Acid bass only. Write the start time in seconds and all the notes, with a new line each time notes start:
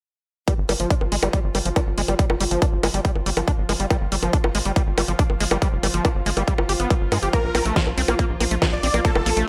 0.48 G3
0.69 G3
0.80 F3
0.90 D4
1.12 G#3
1.23 G3
1.33 G3
1.55 G3
1.66 F3
1.76 D4
1.98 G#3
2.08 G3
2.19 G3
2.40 G3
2.51 F3
2.62 D4
2.83 G#3
2.94 G3
3.05 G3
3.26 G3
3.37 F3
3.48 D4
3.69 G#3
3.80 G3
3.90 G3
4.12 G3
4.23 F3
4.33 D4
4.55 G#3
4.65 G3
4.76 G3
4.98 G3
5.08 F3
5.19 D4
5.40 G#3
5.51 G3
5.62 G3
5.83 G3
5.94 F3
6.05 D4
6.26 G#3
6.37 G3
6.48 G3
6.69 G4
6.80 B3
6.90 G3
7.12 G#3
7.23 G4
7.33 A#3
7.55 A#3
7.65 A3
7.76 F4
7.98 C4
8.08 A#3
8.19 A#3
8.40 A#3
8.51 A3
8.62 F4
8.83 C4
8.94 A#3
9.05 A#3
9.26 A#3
9.37 A3